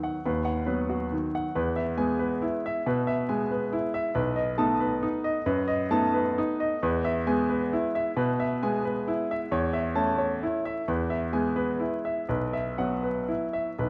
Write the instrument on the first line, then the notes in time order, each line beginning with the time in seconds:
grand piano
Already playing: D#3 F#3 B3
0.03 F#5
0.25 D#2 B4
0.45 F#5
0.66 F#3 B3 B4
0.89 F#4
1.12 D#3
1.35 F#5
1.55 E2 B4
1.76 E5
1.98 G#3 B3 G#5
2.19 B4
2.42 E4
2.66 E5
2.86 B2 B4
3.07 E5
3.29 G#3 B3 G#5
3.51 B4
3.73 E4
3.94 E5
4.15 B1 B4
4.36 D#5
4.58 A3 B3 D#4 A5
4.80 B4
5.03 D#4
5.24 D#5
5.46 F#2 B4
5.68 D#5
5.91 A3 B3 D#4 A5
6.14 B4
6.38 D#4
6.60 D#5
6.83 E2 B4
7.05 E5
7.27 G#3 B3 G#5
7.49 B4
7.73 E4
7.95 E5
8.17 B2 B4
8.40 E5
8.63 G#3 B3 G#5
8.85 B4
9.08 E4
9.31 E5
9.51 E2 C#5
9.73 E5
9.95 A3 C#4 A5
10.18 C#5
10.43 E4
10.65 E5
10.88 E2 B4
11.10 E5
11.33 G#3 B3 G#5
11.56 B4
11.80 E4
12.05 E5
12.29 B1 B4
12.53 E5
12.78 F#3 B3 F#5
13.03 B4
13.28 E4
13.53 E5
13.79 B1 B4